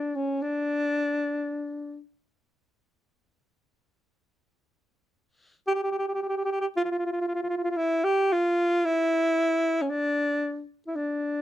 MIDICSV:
0, 0, Header, 1, 2, 480
1, 0, Start_track
1, 0, Tempo, 1052632
1, 186, Time_signature, 10, 3, 24, 8
1, 5206, End_track
2, 0, Start_track
2, 0, Title_t, "Alto saxophone"
2, 0, Program_c, 0, 65
2, 0, Note_on_c, 0, 62, 69
2, 71, Note_on_c, 0, 61, 61
2, 78, Note_off_c, 0, 62, 0
2, 192, Note_on_c, 0, 62, 73
2, 199, Note_off_c, 0, 61, 0
2, 910, Note_off_c, 0, 62, 0
2, 2588, Note_on_c, 0, 67, 90
2, 2616, Note_off_c, 0, 67, 0
2, 2618, Note_on_c, 0, 67, 64
2, 2652, Note_off_c, 0, 67, 0
2, 2658, Note_on_c, 0, 67, 69
2, 2688, Note_off_c, 0, 67, 0
2, 2696, Note_on_c, 0, 67, 62
2, 2725, Note_off_c, 0, 67, 0
2, 2729, Note_on_c, 0, 67, 62
2, 2759, Note_off_c, 0, 67, 0
2, 2773, Note_on_c, 0, 67, 51
2, 2797, Note_off_c, 0, 67, 0
2, 2800, Note_on_c, 0, 67, 62
2, 2828, Note_off_c, 0, 67, 0
2, 2837, Note_on_c, 0, 67, 53
2, 2862, Note_off_c, 0, 67, 0
2, 2865, Note_on_c, 0, 67, 65
2, 2895, Note_off_c, 0, 67, 0
2, 2906, Note_on_c, 0, 67, 58
2, 2933, Note_off_c, 0, 67, 0
2, 2940, Note_on_c, 0, 67, 70
2, 2967, Note_off_c, 0, 67, 0
2, 2971, Note_on_c, 0, 67, 61
2, 2999, Note_off_c, 0, 67, 0
2, 3012, Note_on_c, 0, 67, 70
2, 3037, Note_off_c, 0, 67, 0
2, 3086, Note_on_c, 0, 65, 87
2, 3109, Note_off_c, 0, 65, 0
2, 3123, Note_on_c, 0, 65, 54
2, 3145, Note_off_c, 0, 65, 0
2, 3152, Note_on_c, 0, 65, 64
2, 3176, Note_off_c, 0, 65, 0
2, 3186, Note_on_c, 0, 65, 53
2, 3210, Note_off_c, 0, 65, 0
2, 3217, Note_on_c, 0, 65, 61
2, 3243, Note_off_c, 0, 65, 0
2, 3248, Note_on_c, 0, 65, 50
2, 3275, Note_off_c, 0, 65, 0
2, 3287, Note_on_c, 0, 65, 62
2, 3312, Note_off_c, 0, 65, 0
2, 3318, Note_on_c, 0, 65, 50
2, 3345, Note_off_c, 0, 65, 0
2, 3349, Note_on_c, 0, 65, 62
2, 3377, Note_off_c, 0, 65, 0
2, 3388, Note_on_c, 0, 65, 53
2, 3414, Note_off_c, 0, 65, 0
2, 3416, Note_on_c, 0, 65, 63
2, 3445, Note_off_c, 0, 65, 0
2, 3454, Note_on_c, 0, 65, 58
2, 3479, Note_off_c, 0, 65, 0
2, 3482, Note_on_c, 0, 65, 72
2, 3512, Note_off_c, 0, 65, 0
2, 3515, Note_on_c, 0, 65, 58
2, 3543, Note_on_c, 0, 64, 80
2, 3550, Note_off_c, 0, 65, 0
2, 3668, Note_on_c, 0, 67, 86
2, 3675, Note_off_c, 0, 64, 0
2, 3796, Note_on_c, 0, 65, 84
2, 3803, Note_off_c, 0, 67, 0
2, 4036, Note_on_c, 0, 64, 90
2, 4043, Note_off_c, 0, 65, 0
2, 4477, Note_on_c, 0, 61, 56
2, 4483, Note_off_c, 0, 64, 0
2, 4512, Note_on_c, 0, 62, 82
2, 4519, Note_off_c, 0, 61, 0
2, 4866, Note_off_c, 0, 62, 0
2, 4958, Note_on_c, 0, 64, 50
2, 4995, Note_on_c, 0, 62, 76
2, 5002, Note_off_c, 0, 64, 0
2, 5206, Note_off_c, 0, 62, 0
2, 5206, End_track
0, 0, End_of_file